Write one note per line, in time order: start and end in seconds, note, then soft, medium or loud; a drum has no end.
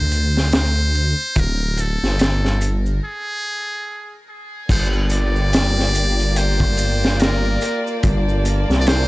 0.00 1.14 D2 loud
0.00 0.54 C5 loud
0.11 closed hi-hat medium
0.11 maracas medium
0.36 snare soft
0.36 maracas soft
0.52 1.41 C5 loud
0.52 snare loud
0.52 closed hi-hat medium
0.52 maracas medium
0.95 maracas medium
1.20 maracas soft
1.36 1.98 D1 loud
1.36 1.82 A#4 loud
1.36 kick loud
1.36 closed hi-hat medium
1.36 maracas soft
1.77 2.80 A4 medium
1.77 closed hi-hat medium
1.77 maracas medium
2.03 3.00 G1 loud
2.03 snare soft
2.03 maracas soft
2.19 snare loud
2.19 closed hi-hat medium
2.19 maracas soft
2.45 snare soft
2.45 maracas soft
2.61 closed hi-hat medium
2.61 maracas medium
2.86 maracas soft
3.05 4.25 G#4 medium
4.69 7.58 G1 medium
4.69 9.08 A#3 medium
4.69 9.08 F4 medium
4.69 8.00 G4 medium
4.69 4.87 C5 loud
4.69 9.08 D5 medium
4.69 kick loud
4.69 closed hi-hat medium
4.69 crash loud
4.69 maracas soft
4.93 maracas soft
5.10 6.39 D5 loud
5.10 closed hi-hat medium
5.10 maracas medium
5.36 maracas soft
5.53 snare loud
5.53 closed hi-hat loud
5.53 maracas soft
5.76 snare soft
5.76 maracas soft
5.95 closed hi-hat medium
5.95 maracas medium
6.19 closed hi-hat soft
6.19 maracas soft
6.36 7.22 C5 loud
6.36 closed hi-hat medium
6.36 maracas soft
6.60 kick loud
6.60 maracas soft
6.77 closed hi-hat medium
6.77 maracas medium
7.03 snare medium
7.03 maracas soft
7.20 7.86 A#4 medium
7.20 snare loud
7.20 closed hi-hat medium
7.20 maracas medium
7.44 maracas soft
7.61 closed hi-hat medium
7.61 maracas medium
7.87 maracas soft
8.03 8.65 G1 loud
8.03 9.08 A5 medium
8.03 kick loud
8.03 closed hi-hat medium
8.03 maracas medium
8.29 maracas soft
8.45 closed hi-hat medium
8.45 maracas medium
8.70 9.08 C2 loud
8.70 snare soft
8.70 maracas soft
8.81 8.89 D5 medium
8.87 9.08 C5 loud
8.87 snare loud
8.87 closed hi-hat medium
8.87 maracas medium